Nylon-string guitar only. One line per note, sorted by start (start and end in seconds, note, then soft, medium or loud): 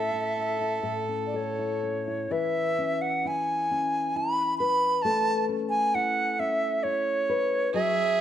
0.00 0.82 A2 medium
0.00 0.11 A3 soft
0.00 0.36 C#4 medium
0.00 0.82 A4 medium
0.36 1.08 C#4 soft
0.61 1.58 E4 soft
0.83 2.30 A2 medium
0.83 1.33 A4 medium
1.08 1.83 C#4 soft
1.34 2.31 A4 medium
1.59 2.07 E4 soft
1.83 2.78 C#4 soft
2.07 3.25 E4 soft
2.31 5.81 E3 medium
2.31 4.60 B4 medium
2.78 3.71 C#4 medium
3.25 4.15 E4 medium
3.71 5.48 C#4 medium
4.16 5.94 E4 medium
4.60 5.05 B4 medium
5.05 7.74 A3 medium
5.05 7.28 B4 medium
5.49 6.39 C#4 medium
5.95 6.84 E4 medium
6.40 8.20 C#4 medium
6.85 8.21 E4 medium
7.29 7.74 B4 medium
7.74 8.21 F#3 medium